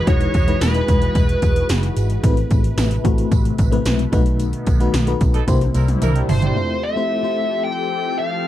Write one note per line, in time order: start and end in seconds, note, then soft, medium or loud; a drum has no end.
0.00 2.20 E3 medium
0.00 0.07 G#3 medium
0.00 0.07 D#4 medium
0.00 0.07 E4 medium
0.00 2.20 F#4 medium
0.00 2.19 G#4 medium
0.00 0.48 B4 medium
0.00 4.09 B4 medium
0.00 2.20 D#5 medium
0.07 0.27 E1 loud
0.07 0.84 E3 medium
0.07 0.45 G#3 medium
0.07 0.45 D#4 medium
0.07 0.46 E4 medium
0.07 0.46 F#4 medium
0.07 0.62 C#5 loud
0.07 kick loud
0.07 closed hi-hat medium
0.21 closed hi-hat medium
0.34 0.54 E1 loud
0.34 kick medium
0.34 closed hi-hat medium
0.34 tambourine soft
0.47 0.73 G#3 medium
0.47 0.73 D#4 medium
0.47 0.73 E4 medium
0.47 0.74 B4 medium
0.47 closed hi-hat medium
0.61 0.81 E1 loud
0.61 1.66 B4 medium
0.61 snare loud
0.61 closed hi-hat medium
0.61 tambourine medium
0.74 1.77 G#3 medium
0.74 1.77 D#4 medium
0.74 1.77 E4 medium
0.74 1.77 B4 medium
0.74 closed hi-hat medium
0.88 1.08 E1 loud
0.88 kick medium
0.88 closed hi-hat medium
0.88 tambourine soft
1.02 closed hi-hat medium
1.15 1.35 E1 loud
1.15 kick medium
1.15 closed hi-hat medium
1.15 tambourine medium
1.29 closed hi-hat medium
1.42 1.62 E1 loud
1.42 kick medium
1.42 closed hi-hat medium
1.42 tambourine soft
1.56 closed hi-hat medium
1.69 1.89 F#1 medium
1.69 snare loud
1.69 closed hi-hat medium
1.69 tambourine medium
1.83 closed hi-hat medium
1.96 2.16 G#1 medium
1.96 closed hi-hat medium
1.96 tambourine soft
2.10 closed hi-hat soft
2.23 2.43 A1 loud
2.23 3.01 A2 medium
2.23 4.11 C3 medium
2.23 3.00 A3 medium
2.23 5.44 A3 medium
2.23 3.00 C4 medium
2.23 3.00 E4 medium
2.23 3.00 B4 loud
2.23 kick loud
2.23 closed hi-hat loud
2.23 tambourine soft
2.37 closed hi-hat medium
2.51 2.70 A1 medium
2.51 kick medium
2.51 closed hi-hat medium
2.51 tambourine soft
2.64 closed hi-hat medium
2.78 2.97 A1 loud
2.78 snare loud
2.78 closed hi-hat medium
2.78 tambourine medium
2.91 closed hi-hat medium
3.04 3.24 A1 loud
3.04 3.68 A3 medium
3.04 3.68 C4 medium
3.04 3.68 E4 medium
3.04 3.69 F#4 medium
3.04 kick medium
3.04 closed hi-hat medium
3.18 closed hi-hat medium
3.31 3.51 A1 loud
3.31 kick loud
3.31 closed hi-hat medium
3.31 tambourine medium
3.45 closed hi-hat medium
3.58 3.78 A1 loud
3.58 kick medium
3.58 closed hi-hat medium
3.58 tambourine soft
3.72 4.11 A3 medium
3.72 4.13 C4 medium
3.72 4.13 E4 medium
3.72 4.12 B4 loud
3.72 closed hi-hat medium
3.85 4.05 B1 medium
3.85 snare loud
3.85 closed hi-hat medium
3.85 tambourine medium
3.99 closed hi-hat medium
4.12 4.52 B1 loud
4.12 4.90 B2 medium
4.12 5.46 D#3 medium
4.12 4.76 A3 medium
4.12 5.46 B3 loud
4.12 4.76 D#4 medium
4.12 4.76 F#4 medium
4.12 4.77 B4 loud
4.12 kick loud
4.12 closed hi-hat medium
4.12 tambourine soft
4.26 closed hi-hat medium
4.40 closed hi-hat medium
4.40 tambourine soft
4.53 closed hi-hat medium
4.67 4.86 B1 medium
4.67 kick medium
4.67 closed hi-hat medium
4.67 tambourine soft
4.80 5.06 A3 medium
4.80 5.06 D#4 medium
4.80 5.06 F#4 medium
4.80 5.06 B4 loud
4.80 closed hi-hat medium
4.94 5.13 B1 loud
4.94 snare loud
4.94 closed hi-hat medium
4.94 tambourine medium
5.07 5.48 A3 medium
5.07 5.48 D#4 medium
5.07 5.48 F#4 medium
5.07 5.48 B4 loud
5.07 closed hi-hat medium
5.21 5.40 B1 loud
5.21 kick medium
5.21 closed hi-hat medium
5.21 tambourine soft
5.34 5.43 F#3 medium
5.34 5.43 D#4 medium
5.34 5.43 A4 medium
5.34 closed hi-hat medium
5.47 5.67 C2 loud
5.47 6.55 C3 medium
5.47 6.25 C3 medium
5.47 6.55 G3 medium
5.47 6.50 A#3 medium
5.47 6.55 A#3 medium
5.47 6.55 D4 medium
5.47 6.50 E4 medium
5.47 6.55 E4 medium
5.47 6.50 G4 medium
5.47 6.02 C5 loud
5.47 kick loud
5.47 closed hi-hat medium
5.47 high tom medium
5.47 tambourine medium
5.61 closed hi-hat medium
5.61 high tom medium
5.75 5.94 C2 medium
5.75 5.86 G3 medium
5.75 5.86 E4 medium
5.75 5.86 A#4 medium
5.75 closed hi-hat medium
5.75 tambourine soft
5.88 closed hi-hat medium
5.88 mid tom medium
6.02 6.21 C2 medium
6.02 6.19 G3 medium
6.02 6.19 E4 medium
6.02 6.19 A#4 loud
6.02 6.15 A#4 medium
6.02 6.15 E5 medium
6.02 closed hi-hat loud
6.02 mid tom medium
6.02 tambourine medium
6.16 6.29 D5 medium
6.16 6.28 G5 medium
6.16 closed hi-hat medium
6.29 6.49 G1 medium
6.29 6.85 C5 medium
6.29 6.42 E5 medium
6.29 6.42 A5 medium
6.29 floor tom loud
6.29 open hi-hat medium
6.29 tambourine soft
6.42 6.69 D5 medium
6.42 6.68 G5 medium
6.42 closed hi-hat soft
6.42 floor tom medium
6.56 8.48 F3 medium
6.56 6.94 A3 medium
6.56 8.48 C4 medium
6.56 6.94 C4 medium
6.56 6.94 E4 medium
6.56 6.94 F4 medium
6.56 8.48 G4 medium
6.56 8.48 A4 medium
6.56 6.95 C5 medium
6.83 7.64 E5 loud
6.96 7.22 A3 medium
6.96 7.22 C4 medium
6.96 7.22 E4 medium
6.96 7.22 F4 medium
6.96 7.22 C5 medium
7.23 8.25 A3 medium
7.23 8.25 C4 medium
7.23 8.26 E4 medium
7.23 8.26 F4 medium
7.23 8.26 C5 medium
7.64 8.18 G5 loud
8.19 8.48 F5 loud